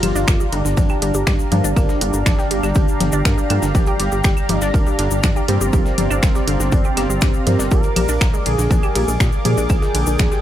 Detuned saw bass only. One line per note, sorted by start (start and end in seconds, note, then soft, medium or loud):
0.03 0.13 G1 loud
0.15 0.25 G1 medium
0.28 0.37 G1 loud
0.52 0.62 G1 medium
0.65 0.74 G1 medium
0.77 0.87 G1 loud
1.02 1.12 G1 loud
1.15 1.24 G1 medium
1.27 1.37 G2 loud
1.52 1.61 G2 loud
1.64 1.74 G1 medium
1.76 1.86 G1 loud
2.01 2.11 G1 medium
2.14 2.23 G1 medium
2.26 2.36 G1 loud
2.51 2.61 G1 medium
2.63 2.73 G1 medium
2.76 2.85 G1 loud
3.00 3.10 G1 loud
3.13 3.22 G1 medium
3.25 3.35 G2 loud
3.50 3.60 G2 medium
3.63 3.72 G1 medium
3.75 3.84 G1 loud
4.00 4.09 G1 medium
4.12 4.22 G1 medium
4.24 4.34 G1 loud
4.49 4.59 G1 loud
4.62 4.71 G1 medium
4.74 4.84 G1 loud
4.99 5.08 G1 loud
5.11 5.21 G1 medium
5.24 5.33 G2 loud
5.48 5.58 G2 loud
5.61 5.70 G1 medium
5.73 5.83 G1 loud
5.98 6.08 G1 medium
6.10 6.20 G1 medium
6.23 6.32 G1 loud
6.48 6.57 G1 medium
6.60 6.70 G1 medium
6.72 6.82 G1 loud
6.97 7.07 G1 loud
7.10 7.19 G1 medium
7.22 7.32 G2 loud
7.47 7.56 G2 medium
7.59 7.69 G1 medium
7.71 7.81 A#1 loud
7.96 8.06 A#1 medium
8.09 8.18 A#1 medium
8.21 8.31 A#1 loud
8.46 8.56 A#1 medium
8.58 8.68 A#1 medium
8.71 8.80 A#1 loud
8.96 9.05 A#1 loud
9.08 9.18 A#1 medium
9.20 9.30 A#2 loud
9.45 9.55 A#2 loud
9.58 9.67 A#1 medium
9.70 9.80 A#1 loud
9.95 10.04 A#1 medium
10.07 10.17 A#1 medium
10.19 10.29 A#1 loud